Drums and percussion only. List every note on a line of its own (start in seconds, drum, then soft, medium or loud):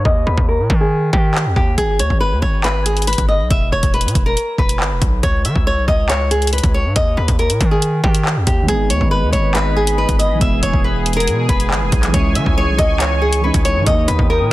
0.05 kick loud
0.38 kick loud
0.70 kick loud
1.13 kick loud
1.35 clap loud
1.56 kick loud
1.78 kick loud
1.78 closed hi-hat medium
1.99 closed hi-hat medium
2.10 kick medium
2.43 kick loud
2.64 clap loud
2.64 closed hi-hat medium
2.86 closed hi-hat medium
2.97 closed hi-hat soft
3.02 closed hi-hat medium
3.07 closed hi-hat medium
3.13 closed hi-hat medium
3.18 kick medium
3.18 closed hi-hat medium
3.51 kick loud
3.51 closed hi-hat medium
3.83 kick medium
3.83 closed hi-hat medium
3.94 closed hi-hat soft
4.01 closed hi-hat medium
4.08 closed hi-hat medium
4.15 kick medium
4.15 closed hi-hat medium
4.37 closed hi-hat medium
4.58 kick loud
4.69 closed hi-hat medium
4.80 clap loud
5.02 kick medium
5.02 closed hi-hat medium
5.23 kick loud
5.23 closed hi-hat medium
5.45 closed hi-hat medium
5.56 kick loud
5.88 kick medium
6.10 clap loud
6.10 closed hi-hat medium
6.31 closed hi-hat medium
6.42 closed hi-hat soft
6.47 closed hi-hat medium
6.53 closed hi-hat medium
6.58 closed hi-hat medium
6.63 kick loud
6.63 closed hi-hat medium
6.96 kick loud
6.96 closed hi-hat medium
7.28 kick medium
7.28 closed hi-hat medium
7.39 closed hi-hat soft
7.50 closed hi-hat medium
7.61 kick loud
7.61 closed hi-hat medium
7.82 closed hi-hat medium
8.04 kick loud
8.14 closed hi-hat medium
8.25 clap loud
8.47 kick loud
8.47 closed hi-hat medium
8.68 kick loud
8.68 closed hi-hat medium
8.90 closed hi-hat medium
9.01 kick medium
9.33 kick loud
9.33 closed hi-hat medium
9.55 clap loud
9.55 closed hi-hat medium
9.87 closed hi-hat medium
10.09 kick loud
10.09 closed hi-hat medium
10.20 closed hi-hat medium
10.41 kick loud
10.41 closed hi-hat medium
10.63 closed hi-hat medium
10.74 kick medium
11.06 closed hi-hat medium
11.13 closed hi-hat medium
11.20 closed hi-hat soft
11.27 closed hi-hat medium
11.49 kick loud
11.49 closed hi-hat medium
11.60 closed hi-hat medium
11.71 clap loud
11.92 kick loud
11.92 closed hi-hat medium
12.03 clap medium
12.03 closed hi-hat medium
12.14 kick loud
12.14 closed hi-hat medium
12.35 closed hi-hat medium
12.46 kick loud
12.79 kick loud
12.79 closed hi-hat medium
13.00 clap loud
13.00 closed hi-hat medium
13.33 closed hi-hat medium
13.54 kick loud
13.54 closed hi-hat medium
13.65 closed hi-hat medium
13.87 kick loud
13.87 closed hi-hat medium
14.08 closed hi-hat medium
14.19 kick loud